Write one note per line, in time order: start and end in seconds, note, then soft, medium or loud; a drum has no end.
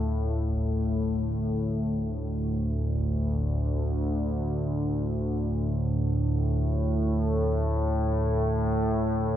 0.00 0.47 D2 medium
0.00 0.46 A2 medium
0.00 0.49 D4 medium
0.00 0.50 A4 medium
0.00 0.49 E5 medium
0.00 0.49 F5 medium
0.47 9.37 D2 medium
0.47 9.37 A2 medium
0.47 concert bass drum medium
2.95 concert bass drum medium